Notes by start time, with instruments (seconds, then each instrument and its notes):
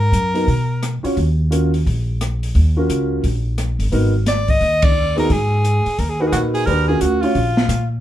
Already playing: upright bass G#2, soprano saxophone A#4
0.12 upright bass F#2, closed hi-hat
0.34 grand piano B3 D#4 F#4 A#4, open hi-hat
0.47 upright bass B2, kick, open hi-hat
0.83 cross-stick, closed hi-hat
1.03 grand piano C#4 F4 F#4 C#5, muted upright bass stroke, open hi-hat
1.17 upright bass D#2, kick, open hi-hat
1.51 grand piano C#4 F4 F#4 A#4, closed hi-hat
1.74 open hi-hat
1.86 upright bass A#1, kick, open hi-hat
2.21 cross-stick, closed hi-hat
2.43 open hi-hat
2.55 upright bass D#2, kick, open hi-hat
2.77 grand piano C#4 F4 F#4 A#4
2.89 upright bass C#2, closed hi-hat
3.24 upright bass A#1, kick, open hi-hat
3.58 cross-stick, closed hi-hat
3.79 upright bass G1, open hi-hat
3.92 upright bass G#1, grand piano B3 D#4 F#4 A#4, kick, open hi-hat
4.26 soprano saxophone D5, snare, closed hi-hat
4.48 soprano saxophone D#5, kick, open hi-hat
4.61 upright bass D#2, kick, open hi-hat
4.82 soprano saxophone D5, kick, ride
5.16 grand piano B3 D#4 F#4 G#4, soprano saxophone A#4, open hi-hat
5.30 upright bass G#2, soprano saxophone G#4, kick, open hi-hat
5.64 closed hi-hat
5.86 muted upright bass stroke, open hi-hat
5.99 upright bass D#2, soprano saxophone A#4, kick, open hi-hat
6.09 soprano saxophone G#4
6.20 grand piano D#4 F#4 A#4 B4, soprano saxophone F#4
6.27 soprano saxophone G#4
6.32 upright bass A#2, tenor saxophone F#4, cross-stick, closed hi-hat
6.54 tenor saxophone G#4, open hi-hat
6.66 upright bass D#2, grand piano D4 F#4 G4 B4, tenor saxophone A#4, kick, open hi-hat
6.88 grand piano C#4 F4 F#4 A#4, tenor saxophone G#4
7.01 upright bass D2, tenor saxophone F#4, closed hi-hat
7.21 grand piano C#4 F4 F#4 C#5, tenor saxophone F4, open hi-hat
7.35 upright bass A#1, kick, open hi-hat
7.57 snare
7.68 upright bass A#2, cross-stick, closed hi-hat